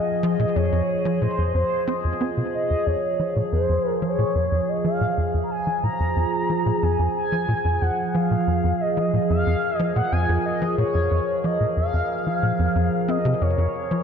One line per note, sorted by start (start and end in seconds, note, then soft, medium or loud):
0.00 14.03 F3 medium
0.00 14.03 G#4 medium
0.00 0.57 D#5 loud
0.00 3.78 D#5 medium
0.23 0.37 F3 medium
0.39 0.45 A#2 medium
0.55 0.70 F2 medium
0.55 1.21 C#5 loud
0.72 0.82 F2 medium
1.05 1.20 F3 medium
1.22 1.27 A#2 medium
1.22 1.52 C5 medium
1.38 1.53 F2 medium
1.54 1.64 F2 medium
1.54 2.17 C5 medium
1.88 1.93 C4 loud
2.04 2.14 F2 medium
2.21 2.30 C4 loud
2.37 2.43 C3 medium
2.54 2.88 D#5 medium
2.70 2.76 F2 medium
2.87 2.96 F2 medium
2.87 3.52 C#5 loud
3.19 3.34 F3 medium
3.36 3.42 A#2 medium
3.52 3.67 F2 medium
3.52 3.99 C5 loud
3.69 3.79 F2 medium
4.02 4.16 F3 medium
4.02 4.70 C#5 loud
4.19 4.24 A#2 medium
4.35 4.49 F2 medium
4.52 4.61 F2 medium
4.69 4.84 D#5 medium
4.84 4.99 F3 medium
4.84 5.31 F5 loud
5.01 5.07 A#2 medium
5.18 5.32 F2 medium
5.34 5.44 F2 medium
5.43 5.52 A#5 medium
5.51 5.83 G#5 loud
5.67 5.81 F3 medium
5.83 5.89 A#2 medium
5.83 6.84 A#5 loud
6.00 6.14 F2 medium
6.16 6.26 F2 medium
6.50 6.64 F3 medium
6.66 6.72 A#2 medium
6.83 6.97 F2 medium
6.83 7.15 G#5 loud
6.99 7.08 F2 medium
7.16 7.83 G#5 loud
7.32 7.46 F3 medium
7.48 7.54 A#2 medium
7.65 7.79 F2 medium
7.81 7.91 F2 medium
7.81 8.16 F#5 loud
8.14 8.29 F3 medium
8.14 8.82 F5 loud
8.30 8.36 A#2 medium
8.30 14.03 A#4 medium
8.47 8.62 F2 medium
8.64 8.73 F2 medium
8.80 9.30 D#5 loud
8.97 9.11 F3 medium
9.13 9.19 A#2 medium
9.30 9.44 F2 medium
9.30 9.76 F5 loud
9.47 9.56 F2 medium
9.76 9.94 F3 medium
9.76 9.92 D#5 loud
9.96 10.01 A#2 medium
9.96 10.14 F#5 medium
10.12 10.26 F2 medium
10.12 10.45 G#5 loud
10.29 10.38 F2 medium
10.46 10.76 D#5 medium
10.62 10.76 F3 medium
10.78 10.84 A#2 medium
10.78 11.46 C#5 loud
10.95 11.09 F2 medium
11.11 11.20 F2 medium
11.44 11.58 F3 medium
11.44 11.77 D#5 loud
11.60 11.66 A#2 medium
11.77 11.91 F2 medium
11.77 13.11 F5 loud
11.93 12.03 F2 medium
12.27 12.41 F3 medium
12.43 12.52 A#2 medium
12.59 12.69 F2 loud
12.75 12.90 F2 loud
13.08 13.18 C4 medium
13.08 13.43 D#5 medium
13.25 13.35 C3 loud
13.41 13.56 F2 medium
13.41 14.03 C#5 medium
13.58 13.67 F2 medium
13.91 14.03 F3 medium